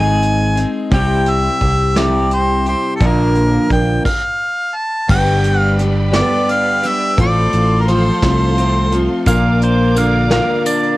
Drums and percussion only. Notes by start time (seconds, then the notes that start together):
0.22 closed hi-hat
0.57 closed hi-hat
0.91 kick, closed hi-hat
1.26 closed hi-hat
1.61 kick, closed hi-hat
1.96 snare, closed hi-hat
2.31 closed hi-hat
2.66 closed hi-hat
3.00 kick, closed hi-hat
3.35 closed hi-hat
3.70 kick, closed hi-hat
4.05 kick, crash
5.09 kick, crash
5.44 closed hi-hat
5.79 closed hi-hat
6.13 snare, closed hi-hat
6.49 closed hi-hat
6.83 closed hi-hat
7.18 kick, closed hi-hat
7.53 closed hi-hat
7.88 closed hi-hat
8.22 kick, snare, closed hi-hat
8.58 closed hi-hat
8.92 closed hi-hat
9.26 kick, closed hi-hat, tambourine
9.62 closed hi-hat
9.96 closed hi-hat, tambourine
10.31 snare, closed hi-hat
10.65 closed hi-hat, tambourine
10.83 tambourine